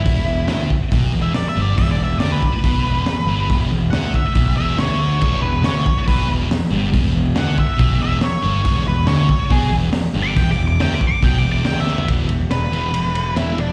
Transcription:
Already playing: E4
0.04 E1 E2, kick, open hi-hat
0.27 E1 E2
0.47 D2 D3, snare, open hi-hat
0.70 kick
0.92 B1 B2, kick, open hi-hat
1.13 E1 E2
1.22 E5
1.34 D5, muted picked electric bass stroke, muted distorted electric guitar stroke, snare, open hi-hat
1.49 E5
1.56 G1 G2
1.61 D5
1.77 E1 E2 E5, kick, open hi-hat
1.91 D5
1.99 E1 E2
2.04 E5
2.18 D2 D3 D5, snare, open hi-hat
2.32 B4
2.42 kick
2.63 B1 B2, kick, open hi-hat
2.83 E1 E2
3.04 muted picked electric bass stroke, muted distorted electric guitar stroke, snare, open hi-hat
3.25 G1 G2
3.49 E1 E2, kick, open hi-hat
3.70 E1 E2
3.90 D2 D3 F#5, snare, open hi-hat
4.14 E5, kick
4.35 B1 B2, kick, open hi-hat
4.56 E1 E2 E5
4.78 D2 D3 C#5, snare, open hi-hat
5.21 E1 E2, kick, crash
5.42 E1 E2 B4
5.62 D2 D3 C#5, snare, open hi-hat
5.86 kick
6.08 B1 B2 B4, kick, open hi-hat
6.28 E1 E2
6.49 muted picked electric bass stroke, muted distorted electric guitar stroke, snare, open hi-hat
6.70 G1 G2
6.92 E1 E2, kick, open hi-hat
7.14 E1 E2
7.35 D2 D3 F#5, snare, open hi-hat
7.58 E5, kick
7.77 B1 B2, kick, open hi-hat
7.99 E1 E2 E5
8.21 C#5, muted distorted electric guitar stroke, muted picked electric bass stroke, snare, open hi-hat
8.42 G1 G2
8.64 E1 E2, kick, open hi-hat
8.85 E1 E2 B4
9.07 D2 D3 C#5, snare, open hi-hat
9.29 kick
9.49 B1 B2 G#4, kick, open hi-hat
9.71 E1 E2
9.92 muted distorted electric guitar stroke, muted picked electric bass stroke, snare, open hi-hat
10.14 G1 G2
10.23 D6
10.36 E1 E2 G5, kick, open hi-hat
10.51 D6
10.57 E1 E2
10.68 D6
10.79 D2 D3 G5, snare, open hi-hat
10.94 D6
11.01 kick
11.08 D6
11.23 B1 B2 G5, kick, open hi-hat
11.38 D6
11.43 E1 E2
11.52 D6
11.64 D2 D3 G5, snare, open hi-hat
11.80 E5
11.87 snare
11.98 floor tom
12.08 E1 E2 B2 E3, kick, ride
12.28 E1, ride
12.50 E1 B4, snare, ride
12.71 E1 E2 B2 E3, ride
12.93 E1, ride
13.15 E1, ride
13.35 E1 E2 B2 E3 E4, snare, ride
13.57 E1 D4, ride

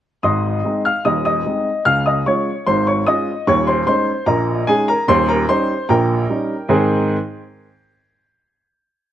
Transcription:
0.23 G#1 G#2 D#5 C6 D#6
0.65 G#3 C4 D#4
0.85 F5 F6
1.05 D#1 D#2 D#5 D#6
1.25 D#5 D#6
1.46 G#3 C4 D#4
1.85 C#2 C#3 F5 F6
2.06 D#5 D#6
2.26 G#3 C#4 F4 C#5 C#6
2.67 G#1 G#2 C5 C6
2.87 C#5 C#6
3.07 G#3 C#4 F4 D#5 D#6
3.47 D#1 D#2 C#5 C#6
3.67 C5 C6
3.87 G#3 C#4 D#4 C5 C6
4.26 A#1 A#2 A#4 D#5 A#5
4.67 G#3 C#4 D#4 G#4 G#5
4.88 A#4 A#5
5.08 D#1 D#2 C5 C6
5.29 A#4 A#5
5.49 G3 C#4 D#4 C5 C6
5.89 A#1 A#2 A#4 G5 A#5
6.30 G3 C#4 D#4
6.69 G#2 D#3 C4 D#4 G#4 C5 G#5

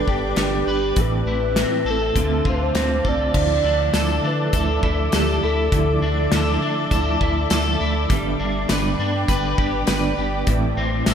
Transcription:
Already playing: G3 D4 A4 B4 D5 G5 D6
0.08 G1 G3 B3 D4 G4, kick
0.36 G1 D3 G3 B3 D4, snare, closed hi-hat
0.41 D4
0.67 G1 G3 B3 D4 G4 B4
0.96 A1 A2 E3 A3 C4 E4 E5 A5 E6, kick, closed hi-hat
1.01 B4
1.25 A1 A3 C4 E4
1.56 E3 A3 C4 E4, snare, closed hi-hat
1.85 A1 C4 E4 A4
1.89 A3 A4
2.15 D2 D3 A3 C4 F4 C5 F5 D6, kick, closed hi-hat
2.20 A4
2.45 D2 A3 C4 F4 C5, kick
2.54 B4
2.63 C5
2.75 D2 D3 A3 C4 F4, snare, closed hi-hat
3.04 C2 A3 C4 F4 A4, kick
3.09 D5
3.34 D2 D3 F3 A3 E4 A4 D5 E5 D6, kick, crash
3.64 D2 A3 D4 E4
3.68 F3
3.94 D2 D3 F3 A3 E4 A4, snare, closed hi-hat, tambourine
4.23 D3 F3 A3 D4 E4 B4
4.53 D2 D3 F3 A3 E4 A4, kick, closed hi-hat
4.82 D2 F3 A3 E4, kick
5.12 D2 D3 F3 A3 E4 G4 A4, snare, closed hi-hat, tambourine
5.42 D2 F3 A3 E4 A4
5.72 D2 D3 F3 A3 E4, kick, closed hi-hat
6.02 D2 A3 D4 E4
6.32 D2 D3 F3 A3 E4 A4, snare, closed hi-hat, tambourine
6.61 D3 F3 A3 D4 E4
6.91 D2 D3 F3 A3 E4 A4, kick, closed hi-hat
7.20 D2 A3 E4, kick
7.25 F3
7.50 D2 D3 F3 A3 E4 A4, snare, closed hi-hat, tambourine
7.80 D2 F3 A3 E4
8.09 G1 G2 D3 G3 B3 D4 B4 D5 G5, kick, closed hi-hat
8.40 G1 G3 B3 D4
8.69 G1 G2 D3 G3 B3 D4 B4, snare, closed hi-hat, tambourine
8.99 G2 G3 B3 D4
9.28 G1 D3 G3 B3 D4 B4, kick, closed hi-hat
9.58 G1 G3 B3 D4 G4, kick
9.87 G1 G2 D3 G3 B3 D4 B4, snare, closed hi-hat, tambourine
10.17 G1 G3 B3 D4 G4
10.46 A1 A2 E3 A3 C4 E4 C5 E5 A5 E6, kick, closed hi-hat
10.77 A1 A3 C4 E4
11.06 A1 A2 E3 A3 C4 E4 A4, snare, closed hi-hat, tambourine

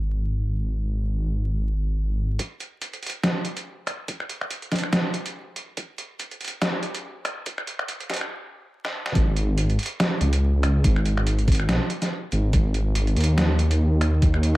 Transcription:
Already playing: G#1
2.39 kick, closed hi-hat
2.60 closed hi-hat
2.82 closed hi-hat
2.93 closed hi-hat
3.03 closed hi-hat
3.06 closed hi-hat
3.10 closed hi-hat
3.24 snare, closed hi-hat
3.45 closed hi-hat
3.57 closed hi-hat
3.87 finger snap, closed hi-hat
4.08 kick, closed hi-hat
4.20 finger snap
4.29 closed hi-hat
4.41 finger snap
4.50 closed hi-hat
4.62 closed hi-hat
4.72 kick, snare, closed hi-hat
4.76 closed hi-hat
4.79 closed hi-hat
4.83 finger snap
4.93 snare, closed hi-hat
5.14 closed hi-hat
5.26 closed hi-hat
5.56 closed hi-hat
5.77 kick, closed hi-hat
5.98 closed hi-hat
6.19 closed hi-hat
6.31 closed hi-hat
6.41 closed hi-hat
6.44 closed hi-hat
6.48 closed hi-hat
6.62 snare, closed hi-hat
6.83 closed hi-hat
6.95 closed hi-hat
7.25 finger snap, closed hi-hat
7.46 kick, closed hi-hat
7.58 finger snap
7.67 closed hi-hat
7.79 finger snap
7.88 closed hi-hat
8.00 closed hi-hat
8.10 kick, snare, closed hi-hat
8.13 closed hi-hat
8.16 closed hi-hat
8.21 finger snap
8.85 snare
9.06 snare
9.15 G#1, kick, closed hi-hat
9.36 closed hi-hat
9.58 closed hi-hat
9.70 closed hi-hat
9.79 closed hi-hat
9.83 closed hi-hat
9.86 closed hi-hat
10.00 snare, closed hi-hat
10.21 C#2, closed hi-hat
10.33 closed hi-hat
10.63 finger snap, closed hi-hat
10.84 G#1, kick, closed hi-hat
10.96 finger snap
11.06 closed hi-hat
11.17 finger snap
11.27 closed hi-hat
11.39 closed hi-hat
11.48 kick, closed hi-hat
11.52 closed hi-hat
11.55 closed hi-hat
11.60 finger snap
11.69 B1, snare, closed hi-hat
11.90 closed hi-hat
12.02 snare, closed hi-hat
12.32 G#1, closed hi-hat
12.53 kick, closed hi-hat
12.74 closed hi-hat
12.95 closed hi-hat
13.07 closed hi-hat
13.16 D#2, closed hi-hat
13.20 closed hi-hat
13.24 closed hi-hat
13.38 snare, closed hi-hat
13.59 closed hi-hat
13.71 closed hi-hat
14.01 finger snap, closed hi-hat
14.22 kick, closed hi-hat
14.34 finger snap
14.43 closed hi-hat

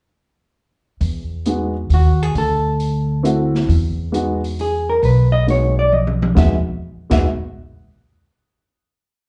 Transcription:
1.01 E2, kick, open hi-hat
1.46 G#3 B3 D#4 F#4, closed hi-hat
1.90 D#2, open hi-hat
1.94 F#4
2.23 G#4
2.35 D2 A4, kick, open hi-hat
2.80 open hi-hat
3.23 A3 C4 E4 F#4, closed hi-hat
3.55 snare
3.68 E2, kick, open hi-hat
4.12 G#3 B3 D#4 F#4, closed hi-hat
4.44 open hi-hat
4.59 G#4, open hi-hat
4.90 A#4
5.03 B1 B4, kick, open hi-hat
5.32 D#5
5.47 G#3 B3 D#4 F#4 C#5, open hi-hat
5.79 D5
5.93 D#5, high tom
6.07 high tom
6.22 high tom
6.35 E2 G#3 B3 D#4 F#4 E5, kick, snare
7.10 E2 G#3 B3 D#4 F#4 E5, kick, snare, crash

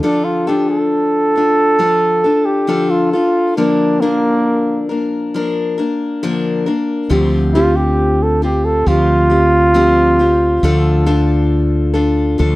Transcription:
0.03 D3 F3 D4 F4 A4
0.24 F4
0.47 D3 F3 D4 F4 G4 A4
0.70 A4
1.36 D4 F4 A4
1.79 F3 D4 F4 A4
2.24 D4 F4 A4
2.45 G4
2.67 D3 F3 D4 F4 A4
2.90 F4
3.12 D4 F4 A4
3.57 D3 F3 A#3 D4 A#4
4.00 D3 F3 A#3 D4 A#4
4.89 A#3 D4 A#4
5.34 F3 A#3 D4 A#4
5.78 A#3 D4 A#4
6.23 D3 F3 A#3 D4 A#4
6.66 A#3 D4 A#4
7.09 D2 D3 F3 C4 F4 G4
7.54 D3 F3 C4 F4 G4
7.76 G4
8.23 A4
8.42 C4 F4 G4
8.65 A4
8.86 D2 F3 C4 F4 G4
9.30 C4 F4 G4
9.74 D3 F3 C4 F4 G4
10.19 C4 F4 G4
10.63 D2 D3 F3 D4 F4 A4
11.06 D3 F3 D4 F4 A4
11.94 D4 F4 A4
12.38 D2 F3 D4 F4 A4

